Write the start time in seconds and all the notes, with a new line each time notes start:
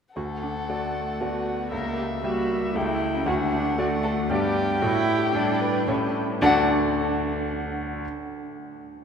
0.15 D2 F#4 A4 F#5
0.42 D4
0.68 A3 F#4 D5
1.20 A3 B3 F#4 D5
1.71 C#2 A#3 A#4 E5
1.97 G4
2.23 G3 A#3 F#4 G4 E5
2.74 C#2 A3 E4 G4 E5 G5
3.14 C#4
3.26 D2 D4 F#4 F#5
3.52 D4
3.78 A3 F#4 D5
4.03 A4
4.29 G2 G3 B3 G4 D5 G5
4.81 A2 E4 F#4
5.08 G4
5.34 G3 D4 E4 A4 D5
5.61 B4
5.87 A2 G3 C#4 E4 C#5 E5
6.41 D2 D3 A3 D4 F#4 A4 D5 F#5